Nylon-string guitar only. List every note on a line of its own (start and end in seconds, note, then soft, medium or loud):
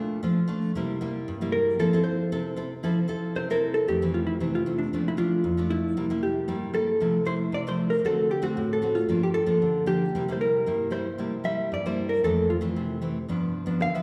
0.00 0.21 A#2 medium
0.00 0.19 A3 medium
0.00 0.20 D4 medium
0.00 0.20 F4 medium
0.23 0.72 F3 medium
0.23 0.38 A3 medium
0.23 0.39 D4 medium
0.23 0.39 F4 medium
0.48 0.70 A3 medium
0.48 0.71 D4 medium
0.48 0.71 F4 medium
0.75 1.25 C3 medium
0.75 0.97 G3 medium
0.75 0.98 A#3 medium
0.75 0.98 E4 medium
1.01 1.36 G3 medium
1.01 1.36 A#3 medium
1.01 1.36 E4 medium
1.28 1.77 G2 medium
1.41 1.78 G3 medium
1.41 1.78 A#3 medium
1.41 1.78 E4 medium
1.79 2.29 F3 medium
1.79 1.88 C4 medium
1.79 1.88 E4 medium
1.79 1.89 A4 medium
1.93 2.28 C4 medium
1.93 2.28 E4 medium
1.93 2.28 A4 medium
2.32 2.81 C3 medium
2.32 2.54 C4 medium
2.32 2.54 E4 medium
2.32 2.54 A4 medium
2.56 2.72 C4 medium
2.56 2.72 E4 medium
2.56 2.73 A4 medium
2.83 3.33 F3 medium
2.83 2.99 C4 medium
2.83 2.99 E4 medium
2.83 2.99 A4 medium
3.08 3.43 C4 medium
3.08 3.44 E4 medium
3.08 3.44 A4 medium
3.36 3.85 C3 medium
3.50 3.86 C4 medium
3.50 3.87 E4 medium
3.50 3.87 A4 medium
3.88 4.37 F2 medium
3.88 3.97 E3 soft
3.88 3.97 A3 medium
3.88 3.97 C4 medium
4.02 4.36 E3 medium
4.02 4.37 A3 medium
4.02 4.37 C4 medium
4.40 4.90 C3 medium
4.40 4.62 E3 medium
4.40 4.62 A3 soft
4.40 4.62 C4 medium
4.66 4.88 E3 soft
4.66 4.88 A3 medium
4.66 4.88 C4 medium
4.93 5.42 A#2 medium
4.93 5.08 F3 medium
4.93 5.08 A3 medium
4.93 5.08 D4 medium
5.17 5.42 F3 medium
5.17 5.42 A3 medium
5.17 5.42 D4 medium
5.44 5.93 F2 medium
5.57 5.94 F3 medium
5.57 5.95 A3 medium
5.57 5.95 D4 medium
5.97 6.46 C3 medium
5.97 6.05 G3 medium
5.97 6.05 A#3 medium
5.97 6.06 E4 medium
6.10 6.45 G3 medium
6.10 6.44 A#3 medium
6.10 6.45 E4 medium
6.48 6.98 G2 medium
6.48 6.70 G3 medium
6.48 6.70 A#3 medium
6.48 6.70 E4 medium
6.73 6.89 G3 medium
6.73 6.89 A#3 medium
6.73 6.90 E4 medium
7.00 7.50 C3 medium
7.00 7.16 F3 medium
7.00 7.16 A3 medium
7.00 7.16 E4 medium
7.25 7.61 F3 medium
7.25 7.61 A3 medium
7.25 7.62 E4 medium
7.52 8.02 C3 medium
7.67 8.03 F3 medium
7.67 8.03 A3 medium
7.67 8.04 E4 medium
8.05 8.54 D3 medium
8.05 8.29 A3 medium
8.05 8.29 C4 medium
8.05 8.30 F#4 medium
8.42 8.78 A3 medium
8.42 8.78 C4 medium
8.42 8.78 F#4 medium
8.57 9.07 A2 medium
8.82 8.98 A3 medium
8.82 8.98 C4 medium
8.82 8.98 F#4 medium
9.08 9.59 G2 medium
9.08 9.44 F3 medium
9.08 9.44 A#3 medium
9.08 9.45 D4 medium
9.46 9.83 F3 medium
9.46 9.83 A#3 medium
9.46 9.83 D4 medium
9.62 10.11 D3 medium
9.86 10.02 F3 medium
9.86 10.02 A#3 medium
9.86 10.03 D4 medium
10.15 10.64 C3 medium
10.15 10.23 G3 medium
10.15 10.24 A#3 medium
10.15 10.24 E4 medium
10.28 10.63 G3 medium
10.28 10.63 A#3 medium
10.28 10.63 E4 medium
10.66 11.16 G2 medium
10.66 10.88 G3 medium
10.66 10.89 A#3 medium
10.66 10.89 E4 medium
10.90 11.07 G3 medium
10.90 11.07 A#3 medium
10.90 11.07 E4 medium
11.18 11.68 C3 medium
11.18 11.34 G3 medium
11.18 11.34 A#3 medium
11.18 11.34 E4 medium
11.44 11.79 G3 medium
11.44 11.79 A#3 soft
11.44 11.80 E4 medium
11.72 12.21 G2 medium
11.86 12.22 G3 medium
11.86 12.22 A#3 medium
11.86 12.23 E4 medium
12.24 12.73 F2 medium
12.24 12.48 E3 medium
12.24 12.49 A3 medium
12.24 12.49 C4 medium
12.61 12.97 E3 medium
12.61 12.97 A3 medium
12.61 12.97 C4 medium
12.76 13.26 C3 medium
13.02 13.17 E3 medium
13.02 13.17 A3 soft
13.02 13.17 C4 medium
13.29 13.78 G2 medium
13.29 13.63 F3 medium
13.29 13.63 B3 medium
13.29 13.64 D4 medium
13.66 13.89 F3 medium
13.66 13.89 B3 medium
13.66 13.89 D4 medium
13.80 14.02 D3 medium
13.95 14.02 F3 medium
13.95 14.02 B3 medium
13.95 14.02 D4 medium